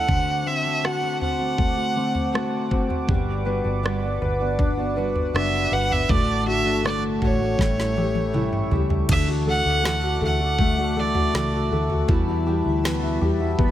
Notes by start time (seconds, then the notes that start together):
Already playing: E4 A4 F#5 A5
0.08 D3 A3 C4 F#4 C5 F#5 D6, kick, floor tom
0.45 D3 A3 C4 F#4 E5
0.64 A3 C4 F#4
0.83 D3 A3 C4 F#4 F#5, cross-stick
1.02 A3 C4 F#4
1.21 C4 F#5, floor tom
1.39 A3 C4 F#4
1.58 A3, kick, floor tom
1.77 A3 C4 F#4
1.95 D3 A3 C4 F#4
2.15 floor tom
2.33 D3 A3 C4 F#4, cross-stick
2.70 D3 A3 C4 F#4, kick
2.89 A3 C4 F#4, floor tom
3.07 G1 G3 B3 D4 F#4 B4 D5, kick, floor tom
3.45 G3 B3 D4 F#4 B4
3.64 G1 B3 D4 F#4
3.83 G3 B3 D4 F#4 D5, cross-stick
4.02 B3 D4 F#4
4.22 G1 B4, floor tom
4.40 B3 D4 F#4
4.59 D4, kick, floor tom
4.77 B3 D4 F#4
4.96 G3 B3 D4 F#4 B4
5.16 floor tom
5.34 F#1 G3 B3 D4 F#4 E5, cross-stick
5.71 G1 G3 B3 D4 F#4 B4 F#5
5.90 B3 D4 F#4 E5, floor tom
6.08 A1 A2 D3 A3 D4 F#4 A4 D5 A5, kick, floor tom
6.46 D3 A3 D4 F#4 E5
6.64 G1 A3 D4 F#4
6.83 A2 D3 A3 D4 F#4 D5, cross-stick
7.22 A1 F#4 C#5, kick, floor tom
7.39 A3 D4 F#4
7.58 A1 A2 E3 G3 A3 C#4 E4 E5 G5 C#6, kick, snare
7.76 G3 C#4 E4, snare
7.95 E3 G3 C#4 E4 G4, high tom
8.15 high tom
8.33 A2 E3 G3 C#4 E4, mid tom
8.53 mid tom
8.71 C#2 E3 G3 C#4 E4 G4, floor tom
8.89 G3 C#4 E4, floor tom
9.08 D2 D3 E3 A3 D4 F#4 A4 E5 A5 D6, kick, floor tom, crash
9.28 F#4
9.45 E3 A3 D4 F#4 A4 F#5
9.65 D2 F#4
9.83 D3 E3 A3 D4 F#4 A4, snare
10.03 F#4
10.21 D2 E3 A3 D4 F#4 A4 F#5, floor tom
10.39 A3 D4 F#4
10.59 A3, kick, floor tom
10.77 A3 D4 F#4
10.96 E3 A3 D4 F#4 A4 D5
11.15 A3 D4 F#4, floor tom
11.34 C#2 E3 A3 D4 F#4 A4, snare
11.53 F#4
11.71 D2 E3 A3 D4 F#4 A4
11.90 F#4, floor tom
12.08 E2 B2 E3 G3 E4 F#4 B5, kick, floor tom
12.27 E4
12.46 E3 G3 E4 F#4 G4
12.66 D2 E4
12.84 E2 B2 E3 G3 E4 F#4 B4, snare
13.03 E4
13.21 E2 E3 G3 E4 F#4 G4, floor tom
13.40 E3 G3 E4 F#4
13.59 E2 B3, kick, floor tom